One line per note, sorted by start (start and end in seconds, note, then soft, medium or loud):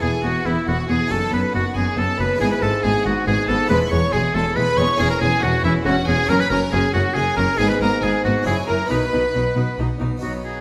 0.00 0.10 E1 medium
0.00 0.10 E2 medium
0.00 0.22 E2 medium
0.00 1.04 B3 medium
0.00 0.10 B3 medium
0.00 1.05 E4 medium
0.00 1.06 G#4 medium
0.00 0.12 G#4 medium
0.00 0.23 G#4 medium
0.00 0.24 G#5 medium
0.23 0.32 E1 medium
0.23 0.32 E2 medium
0.23 0.43 E2 medium
0.23 0.31 B3 medium
0.23 0.47 F#4 medium
0.23 0.46 F#4 medium
0.23 0.45 F#5 medium
0.45 0.54 E1 medium
0.45 0.65 E2 medium
0.45 0.54 E2 medium
0.45 0.53 B3 medium
0.45 0.67 E4 medium
0.45 0.67 E5 medium
0.66 0.75 E1 medium
0.66 0.76 E2 medium
0.66 0.87 E2 medium
0.66 0.75 B3 medium
0.66 0.89 F#4 medium
0.66 0.78 F#4 medium
0.66 0.88 F#5 loud
0.88 0.97 E1 medium
0.88 0.97 E2 medium
0.88 1.09 E2 medium
0.88 0.96 B3 medium
0.88 1.11 G#4 medium
0.88 1.12 G#4 medium
0.88 1.10 G#5 medium
1.06 2.34 B3 medium
1.06 1.17 B3 medium
1.06 2.35 D#4 soft
1.06 2.36 F#4 medium
1.10 1.19 F#1 medium
1.10 1.30 F#2 medium
1.10 1.19 F#2 medium
1.10 1.32 A4 medium
1.10 1.32 A4 loud
1.10 1.32 A5 loud
1.31 1.40 F#1 medium
1.31 1.51 F#2 medium
1.31 1.40 F#2 medium
1.31 1.39 B3 medium
1.31 1.54 B4 medium
1.31 1.41 B4 medium
1.31 1.54 B5 loud
1.53 1.62 F#1 medium
1.53 1.73 F#2 medium
1.53 1.62 F#2 medium
1.53 1.61 B3 medium
1.53 1.75 F#4 medium
1.53 1.65 F#4 medium
1.53 1.75 F#5 medium
1.75 1.84 F#1 medium
1.75 1.95 F#2 medium
1.75 1.84 F#2 medium
1.75 1.83 B3 medium
1.75 1.97 G#4 medium
1.75 2.00 G#4 medium
1.75 1.97 G#5 medium
1.97 2.05 F#1 medium
1.97 2.17 F#2 medium
1.97 2.06 F#2 medium
1.97 2.05 B3 medium
1.97 2.19 A4 medium
1.97 2.18 A5 loud
2.19 2.27 F#1 medium
2.19 2.38 F#2 medium
2.19 2.28 F#2 medium
2.19 2.27 B3 medium
2.19 2.41 B4 medium
2.19 2.40 B4 medium
2.19 2.41 B5 loud
2.35 3.63 G#3 medium
2.35 3.64 B3 medium
2.35 3.65 E4 medium
2.40 2.49 G#1 medium
2.40 2.60 G#2 medium
2.40 2.49 G#2 medium
2.40 2.48 B3 medium
2.40 2.51 G#4 loud
2.40 2.46 G#4 medium
2.40 2.51 G#5 loud
2.51 2.62 B4 medium
2.51 2.64 B4 medium
2.51 2.62 B5 medium
2.61 2.70 G#1 medium
2.61 2.70 G#2 medium
2.61 2.82 G#2 medium
2.61 2.70 B3 medium
2.61 2.83 A4 medium
2.61 2.85 A4 medium
2.61 2.83 A5 loud
2.83 2.92 G#1 medium
2.83 2.92 G#2 medium
2.83 3.03 G#2 medium
2.83 2.92 B3 medium
2.83 3.04 G#4 medium
2.83 3.05 G#4 medium
2.83 3.04 G#5 loud
3.04 3.13 G#1 medium
3.04 3.25 G#2 medium
3.04 3.13 G#2 medium
3.04 3.13 B3 medium
3.04 3.27 F#4 medium
3.04 3.26 F#5 medium
3.25 3.35 G#1 medium
3.25 3.35 G#2 medium
3.25 3.47 G#2 medium
3.25 3.34 B3 medium
3.25 3.48 G#4 medium
3.25 3.50 G#4 medium
3.25 3.47 G#5 loud
3.47 3.57 G#1 medium
3.47 3.57 G#2 medium
3.47 3.68 G#2 medium
3.47 3.55 B3 medium
3.47 3.69 A4 loud
3.47 3.70 A4 medium
3.47 3.69 A5 loud
3.66 3.78 E1 medium
3.66 3.78 E2 medium
3.66 3.78 G#3 medium
3.66 4.94 B3 medium
3.66 4.95 E4 medium
3.66 4.95 G#4 medium
3.66 3.77 B4 loud
3.66 3.79 B4 loud
3.66 3.91 B5 loud
3.71 3.90 E2 medium
3.89 4.00 E1 medium
3.89 4.00 E2 medium
3.89 4.11 E2 medium
3.89 3.99 G#3 medium
3.89 4.14 C#5 loud
3.89 4.12 C#5 medium
3.89 4.12 C#6 loud
4.12 4.21 E1 medium
4.12 4.33 E2 medium
4.12 4.21 E2 medium
4.12 4.21 G#3 medium
4.12 4.35 G#4 medium
4.12 4.34 G#4 loud
4.12 4.20 G#5 loud
4.34 4.43 E1 medium
4.34 4.43 E2 medium
4.34 4.55 E2 medium
4.34 4.42 G#3 medium
4.34 4.58 A4 medium
4.34 4.56 A4 medium
4.34 4.56 A5 loud
4.55 4.65 E1 medium
4.55 4.64 E2 medium
4.55 4.76 E2 medium
4.55 4.64 G#3 medium
4.55 4.77 B4 loud
4.55 4.79 B4 loud
4.55 4.77 B5 loud
4.77 4.86 E1 medium
4.77 4.86 E2 medium
4.77 4.98 E2 medium
4.77 4.86 G#3 medium
4.77 4.99 C#5 loud
4.77 5.00 C#5 loud
4.77 4.99 C#6 loud
4.95 6.23 C#4 medium
4.95 6.24 E4 medium
4.95 6.25 G#4 medium
4.95 5.10 G#4 loud
4.95 5.10 G#5 loud
4.99 5.07 E1 medium
4.99 5.07 E2 medium
4.99 5.19 E2 medium
4.99 5.08 C#4 medium
4.99 5.10 G#4 loud
5.09 5.21 A#4 medium
5.09 5.21 A#5 loud
5.20 5.29 E1 medium
5.20 5.40 E2 medium
5.20 5.29 E2 medium
5.20 5.29 C#4 medium
5.20 5.42 G#4 loud
5.20 5.45 G#4 medium
5.20 5.42 G#5 loud
5.42 5.51 E1 medium
5.42 5.50 E2 medium
5.42 5.62 E2 medium
5.42 5.51 C#4 medium
5.42 5.63 F#4 medium
5.42 5.64 F#4 medium
5.42 5.64 F#5 loud
5.63 5.72 E1 medium
5.63 5.72 E2 medium
5.63 5.84 E2 medium
5.63 5.73 C#4 medium
5.63 5.85 E4 medium
5.63 5.74 E4 medium
5.63 5.72 E5 loud
5.85 5.94 E1 medium
5.85 5.94 E2 medium
5.85 6.06 E2 medium
5.85 5.94 C#4 medium
5.85 6.07 F#4 loud
5.85 5.96 F#4 medium
5.85 6.07 F#5 loud
6.07 6.15 E1 medium
6.07 6.16 E2 medium
6.07 6.27 E2 medium
6.07 6.15 C#4 medium
6.07 6.29 G#4 loud
6.07 6.31 G#4 loud
6.07 6.29 G#5 loud
6.24 7.53 C#4 medium
6.24 7.54 F#4 medium
6.29 6.37 F#1 medium
6.29 6.49 F#2 medium
6.29 6.37 F#2 medium
6.29 6.37 C#4 medium
6.29 6.40 A#4 loud
6.29 6.42 A#4 loud
6.29 6.34 A#5 loud
6.39 6.50 B4 medium
6.39 6.49 B4 medium
6.39 6.51 B5 loud
6.50 6.59 F#1 medium
6.50 6.70 F#2 medium
6.50 6.59 F#2 medium
6.50 6.59 C#4 medium
6.50 6.60 A#4 loud
6.50 6.72 A#4 loud
6.50 6.59 A#5 loud
6.72 6.81 F#1 medium
6.72 6.92 F#2 medium
6.72 6.81 F#2 medium
6.72 6.81 C#4 medium
6.72 6.94 G#4 loud
6.72 6.93 G#4 loud
6.72 6.94 G#5 loud
6.93 7.02 F#1 medium
6.93 7.14 F#2 medium
6.93 7.03 F#2 medium
6.93 7.02 C#4 medium
6.93 7.15 F#4 medium
6.93 7.16 F#4 medium
6.93 7.01 F#5 loud
7.14 7.24 F#1 medium
7.14 7.35 F#2 medium
7.14 7.24 F#2 medium
7.14 7.23 C#4 medium
7.14 7.36 G#4 medium
7.14 7.37 G#4 loud
7.14 7.37 G#5 loud
7.37 7.45 F#1 medium
7.37 7.46 F#2 medium
7.37 7.57 F#2 medium
7.37 7.45 C#4 medium
7.37 7.60 A#4 loud
7.37 7.59 A#4 loud
7.37 7.59 A#5 loud
7.54 8.41 G#3 medium
7.54 8.42 B3 medium
7.54 8.43 D#4 medium
7.58 7.67 G#1 medium
7.58 7.79 G#2 medium
7.58 7.68 G#2 medium
7.58 7.67 B3 medium
7.58 7.69 G#4 loud
7.58 7.70 G#4 loud
7.58 7.70 G#5 loud
7.69 7.81 B4 medium
7.69 7.74 B5 loud
7.80 7.89 G#1 medium
7.80 8.01 G#2 medium
7.80 7.90 G#2 medium
7.80 7.89 B3 medium
7.80 8.02 A#4 medium
7.80 8.05 A#4 medium
7.80 8.02 A#5 loud
8.02 8.10 G#1 medium
8.02 8.23 G#2 medium
8.02 8.11 G#2 medium
8.02 8.11 B3 medium
8.02 8.24 G#4 medium
8.02 8.10 G#5 loud
8.24 8.33 G#1 medium
8.24 8.33 G#2 medium
8.24 8.45 G#2 medium
8.24 8.32 B3 medium
8.24 8.32 F#4 medium
8.24 8.46 F#4 medium
8.24 8.46 F#5 medium
8.43 8.54 F#1 medium
8.43 8.87 C#4 medium
8.43 8.88 E4 medium
8.43 8.88 F#4 medium
8.43 8.68 G#4 medium
8.43 8.68 G#5 loud
8.47 8.55 F#2 medium
8.47 8.67 F#2 medium
8.47 8.55 E4 medium
8.47 8.57 G#4 medium
8.67 8.77 F#1 medium
8.67 8.76 F#2 medium
8.67 8.89 F#2 medium
8.67 8.76 E4 medium
8.67 8.90 A#4 medium
8.67 8.91 A#5 loud
8.86 10.16 B3 medium
8.86 10.17 D#4 medium
8.86 8.98 D#4 medium
8.86 10.18 F#4 soft
8.86 9.76 B4 medium
8.86 9.79 B5 loud
8.90 8.99 B1 medium
8.90 8.99 B2 medium
8.90 9.11 B2 medium
8.90 9.77 B4 medium
9.12 9.21 B1 medium
9.12 9.33 B2 medium
9.12 9.21 B2 medium
9.12 9.20 D#4 medium
9.34 9.43 B1 medium
9.34 9.55 B2 medium
9.34 9.44 B2 medium
9.34 9.42 D#4 medium
9.56 9.64 B1 medium
9.56 9.76 B2 medium
9.56 9.65 B2 medium
9.56 9.64 D#4 medium
9.78 9.87 B1 medium
9.78 9.87 B2 medium
9.78 9.99 B2 medium
9.78 9.86 D#4 medium
10.00 10.09 B1 medium
10.00 10.20 B2 medium
10.00 10.09 B2 medium
10.00 10.08 D#4 medium
10.17 10.61 B3 soft
10.17 10.61 D#4 soft
10.17 10.61 F#4 soft
10.22 10.59 B1 medium
10.22 10.57 B2 soft
10.22 10.59 B2 medium
10.22 10.42 F#3 soft
10.22 10.43 D#4 soft
10.22 10.33 F#4 medium
10.22 10.42 B5 soft
10.44 10.61 F#3 soft
10.44 10.61 D#4 soft
10.44 10.61 G#4 medium
10.44 10.61 B5 soft